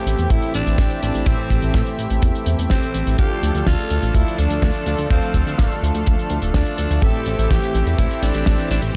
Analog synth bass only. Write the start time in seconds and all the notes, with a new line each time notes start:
0.06 A1
0.19 E2
0.30 A1
0.54 A1
0.67 A1
0.78 A1
1.03 A1
1.15 A1
1.26 A1
1.50 A1
1.63 A1
1.74 A2
1.99 A1
2.11 A1
2.23 E2
2.47 E2
2.59 E2
2.71 A1
2.95 A1
3.07 A1
3.19 D2
3.43 D2
3.55 D2
3.67 D2
3.91 D2
4.03 A1
4.15 D2
4.38 D2
4.51 D2
4.62 D2
4.87 D2
4.99 D2
5.10 D2
5.34 D2
5.47 D2
5.59 D1
5.82 D2
5.95 D2
6.07 D2
6.30 D2
6.43 D1
6.54 D2
6.79 D2
6.91 D2
7.02 A1
7.27 A1
7.39 A1
7.51 A1
7.74 A1
7.87 E2
7.99 A1
8.23 A1
8.35 A1
8.47 A1
8.71 A1
8.83 A1